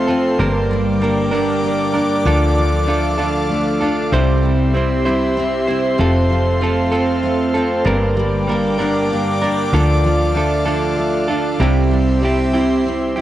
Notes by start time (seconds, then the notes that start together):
Already playing: F1 F2 F3 A3 A4 C5 F5 C6
0.07 C4 F4 A4
0.38 G1 G2 D3 G3 A#3 D4 A#4 D5 G5 D6
0.71 G3
1.01 G3 A#3 D4 A#4
1.31 G2 D3 G3 A#3 D4 A#4
1.64 A#3
1.94 G3 A#3 D4 A#4
2.25 D2 D3 F3 D4 F4 A4 F5
2.56 F3
2.87 F3 A3 D4 F4 A4
3.18 D3 F3 D4 F4 A4
3.49 A3
3.81 D4 F4 A4
4.12 C2 C3 G3 C4 E4 G4 C5 E5 C6
4.43 G3
4.74 G3 C4 E4 C5
5.05 C3 G3 C4 E4 C5
5.37 C4
5.68 C4 E4 C5
5.98 F1 F2 F3 C4 F4 A4 F5
6.30 F3
6.61 F3 A3 C4 F4 A4
6.92 F3 C4 F4 A4
7.23 A3
7.54 C4 F4 A4
7.85 G1 G2 D3 G3 A#3 D4 A#4 D5 G5 D6
8.17 G3
8.47 G3 A#3 D4 A#4
8.78 G2 D3 G3 A#3 D4 A#4
9.10 A#3
9.42 G3 A#3 D4 A#4
9.72 D2 D3 F3 D4 F4 A4 F5
10.04 F3
10.35 F3 A3 D4 F4 A4
10.66 D3 F3 D4 F4 A4
10.96 A3
11.28 D4 F4 A4
11.58 C2 C3 G3 C4 E4 G4 C5 E5 C6
11.91 G3
12.22 G3 C4 E4 G4
12.53 C3 G3 C4 E4 G4
12.86 C4
13.16 E4 G4